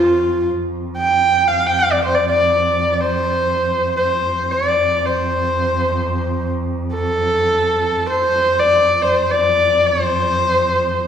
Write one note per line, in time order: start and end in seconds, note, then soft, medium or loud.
0.00 0.54 F2 medium
0.00 0.47 F4 medium
0.54 4.29 F2 medium
0.98 1.49 G5 medium
1.47 1.68 F5 medium
1.66 1.81 G5 medium
1.79 1.93 F5 medium
1.92 2.02 D5 medium
2.04 2.16 C5 medium
2.15 2.28 D5 medium
2.28 2.92 D5 medium
2.92 3.02 D5 medium
3.01 3.96 C5 medium
3.97 4.53 C5 medium
4.29 7.99 F2 medium
4.51 5.08 D5 medium
5.06 6.51 C5 medium
6.93 8.07 A4 medium
8.00 11.07 F2 medium
8.09 8.61 C5 medium
8.59 9.03 D5 medium
9.02 9.32 C5 medium
9.31 9.88 D5 medium
9.87 11.07 C5 medium